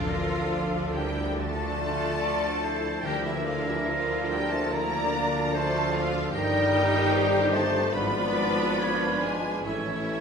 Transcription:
Already playing: D2 D3 F3 A3 D4 F4 A4 F5
0.08 A#4
0.31 F4
0.51 D4 F4 A4
0.73 F4
0.92 G3 D4 E4 G4 A#4 G5
1.15 A3
1.35 D3 F3 A3 D4 F4 A4 D5 A5
1.78 A3 F4
2.00 F4
2.21 F4 A4 D5
2.43 F4
2.63 E4 C5
2.83 A3
3.02 D2 D3 F3 G3 D4 E4 G4 A#4 G5
3.22 E3 A#3 E4 G4 E5
3.43 F3 D4 F4 A4 F5
3.64 E3 E4 F4 E5
3.69 G4
3.85 F3 D4 F4 A#4 F5
3.89 D5
4.09 F4
4.28 G3 D4 G4 A#4 G5
4.50 A3 A#3 A4 C5 A5
4.70 D3 F3 A#3 D4 E4 A#4 D5 A#5
5.14 A#3 D4
5.35 F4
5.53 A3 D4 F4 A4 C5 D5 A5
5.76 F4
5.91 F3 F4 F5
5.95 D4 A4
6.15 A#3
6.33 G1 G2 D#3 G3 D#4 G4 A#4 G5
6.55 G3
6.74 A#3
7.12 C5 D#5
7.51 A3 A#3 A4 C5 A5
7.75 G3
7.92 G#1 G#2 F3 B3 D4 F4 B4 D5 B5
8.16 G#3
8.36 D5
8.57 F4
8.78 C#5 D5
9.01 F4
9.21 G#3 B3 G#4 B4 G#5
9.43 G#3
9.63 A1 A2 E3 C#4 E4 A4 C#5 E5
9.87 E3

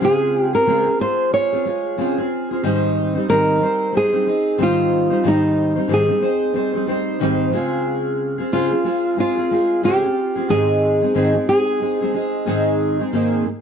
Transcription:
0.00 C#3 G#3 C4 F4 G#4
0.05 G#4
0.40 G4
0.53 C4 F4 G#4 A#4
0.67 C#3 G#3 C4 F4 G#4
0.86 C4 F4 G#4
0.99 G#3 C4 F4 G#4 C5
1.32 G#3 C4 F4 G#4 C#5
1.52 C4 F4 G#4
1.65 G#3 F4 G#4
1.98 C#3 G#3 C4 F4 G#4
2.18 C4 F4 G#4
2.51 C4 F4 G#4
2.63 G#2 D#3 G3 C4 D#4 C5
3.15 G3 C4 D#4 C5
3.28 G#2 D#3 G3 C4 D#4 A#4 C5
3.60 G3 C4 D#4 C5
3.92 G3 C4 D#4 C5
3.97 G#4
4.12 G3 C4 D#4 C5
4.26 C4 D#4 C5
4.58 G#2 D#3 G3 C4 D#4 C5
4.63 F4
5.10 G3 C4 D#4 C5
5.23 G#2 D#3 G3 C4 D#4 C5
5.28 D#4
5.76 G3 C4 D#4 C5
5.88 G#2 D#3 G3 C4 D#4 C5
5.94 G#4
6.08 G3 C4 D#4 C5
6.21 C4 D#4 C5
6.54 G3 C4 D#4 C5
6.73 G3 C4 D#4 C5
6.87 G3 C4 D#4 C5
7.20 G#2 D#3 G3 C4 D#4 C5
7.53 C#3 G#3 C4 F4 G#4
8.38 C4 F4 G#4
8.52 C#3 G#3 C4 F4 G#4
8.71 C4 F4 G#4
8.84 G#3 C4 F4 G#4
9.17 G#3 C4 F4 G#4
9.37 C4 F4 G#4
9.51 G#3 C4 F4 G#4
9.83 C#3 G#3 C4 F4 G4 G#4
10.04 C4 F4
10.35 C4 F4 G#4
10.49 G#2 D#3 G#3 C4 D#4 G#4
11.02 G#3 C4 D#4 G#4
11.14 G#2 D#3 G#3 C4 D#4 G#4
11.35 G#3 C4 D#4 G#4
11.49 G#3 C4 D#4 G#4
11.81 G#3 C4 D#4 G#4
12.01 G#3 C4 D#4 G#4
12.14 G#3 C4 D#4 G#4
12.46 G#2 D#3 G#3 C4 D#4 G#4
12.99 G#3 C4 D#4 G#4
13.13 G#2 D#3 A#3 C4 D#4 G#4
13.45 G#2 D#3 A#3

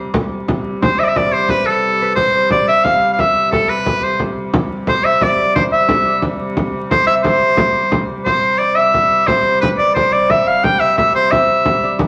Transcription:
Already playing: C3 G3 C5 E5
0.13 C3 G3, frame drum
0.32 frame drum
0.48 frame drum
0.82 C5, frame drum
0.99 E5
1.03 D5
1.08 E5
1.16 D5, frame drum
1.32 C5, frame drum
1.49 B4, frame drum
1.66 A4
2.00 B4, frame drum
2.15 C5, frame drum
2.35 C5
2.50 D5, frame drum
2.68 E5
2.84 F5, frame drum
3.02 frame drum
3.13 F5
3.19 E5, frame drum
3.52 A4, frame drum
3.69 B4
3.86 frame drum
4.03 C5, frame drum
4.18 C3 G3, frame drum
4.37 frame drum
4.54 frame drum
4.87 C5, frame drum
5.04 E5, frame drum
5.21 D5, frame drum
5.39 D5, frame drum
5.55 C5, frame drum
5.72 E5
5.89 frame drum
6.05 D5, frame drum
6.22 frame drum
6.40 frame drum
6.57 frame drum
6.91 C5, frame drum
7.07 E5, frame drum
7.23 C5, frame drum
7.41 frame drum
7.57 frame drum
7.74 frame drum
7.92 frame drum
8.09 frame drum
8.25 C3 G3 C5, frame drum
8.43 frame drum
8.58 D5
8.75 E5
8.94 frame drum
9.27 C5, frame drum
9.46 frame drum
9.61 B4, frame drum
9.78 D5
9.95 C5, frame drum
10.12 D5
10.30 E5, frame drum
10.46 F5, frame drum
10.64 G5, frame drum
10.80 E5
10.98 E5, frame drum
11.15 C5
11.31 E5, frame drum
11.65 frame drum
11.83 D5
11.99 frame drum

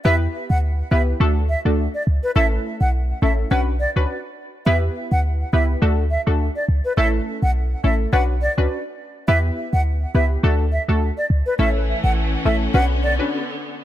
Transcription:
0.05 E2 B3 E4 G4 B4 E5
0.50 D2 F#5
0.91 C#2 B3 E4 G4 B4 E5
1.20 D2 A3 D4 F#4 A4
1.49 E5
1.65 D2 A3 D4 F#4 A4
1.94 D5
2.07 C#2
2.23 B4
2.36 A1 A3 C#4 E4 A4 E5
2.81 B1 F#5
3.22 A1 A3 C#4 E4 A4 E5
3.51 B1 C#4 D4 F#4 B4 F#5
3.80 D5
3.96 C#2 C#4 D4 F#4 B4
4.66 E2 B3 E4 G4 B4 E5
5.12 D2 F#5
5.53 C#2 B3 E4 G4 B4 E5
5.82 D2 A3 D4 F#4 A4
6.11 E5
6.27 D2 A3 D4 F#4 A4
6.56 D5
6.69 C#2
6.85 B4
6.97 A1 A3 C#4 E4 A4 E5
7.43 B1 F#5
7.84 A1 A3 C#4 E4 A4 E5
8.13 B1 C#4 D4 F#4 B4 F#5
8.42 D5
8.58 C#2 C#4 D4 F#4 B4
9.28 E2 B3 E4 G4 B4 E5
9.73 D2 F#5
10.15 C#2 B3 E4 G4 B4 E5
10.43 D2 A3 D4 F#4 A4
10.72 E5
10.88 D2 A3 D4 F#4 A4
11.18 D5
11.30 C#2
11.46 B4
11.59 A1 E3 A3 C#4 E4 A4 E5
12.04 A1 F#5
12.45 A1 A3 C#4 E4 A4 E5
12.74 B1 D3 B3 C#4 D4 F#4 B4 F#5
13.03 D5
13.19 C#4 D4 F#4 B4

